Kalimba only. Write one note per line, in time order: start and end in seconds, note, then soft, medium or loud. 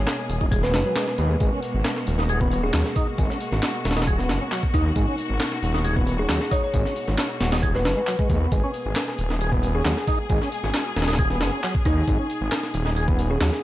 0.63 0.72 B4 medium
0.74 0.81 B4 medium
0.86 0.93 B4 medium
2.63 2.79 G#4 medium
3.53 3.68 F#4 medium
4.74 4.82 D#4 medium
4.86 4.93 D#4 medium
6.19 6.35 G#4 medium
6.52 6.60 C#5 medium
6.64 6.71 C#5 medium
7.75 7.84 B4 medium
7.86 7.93 B4 medium
7.98 8.04 B4 medium
9.75 9.90 G#4 medium
10.64 10.79 F#4 medium
11.86 11.93 D#4 medium
11.97 12.04 D#4 medium
13.30 13.46 G#4 loud